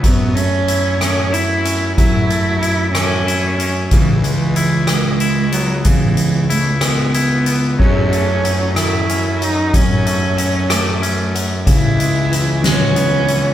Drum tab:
CC |------|------|------|------|
HH |xxxxxx|xxxxxx|xxxxxx|xxxxxx|
SD |---r--|---r--|---r--|---r--|
BD |o-----|o-----|o-----|o-----|

CC |x-----|------|------|
HH |-xxxxx|xxxxxx|xxxxxx|
SD |---r--|---r--|---o--|
BD |o-----|o-----|o-----|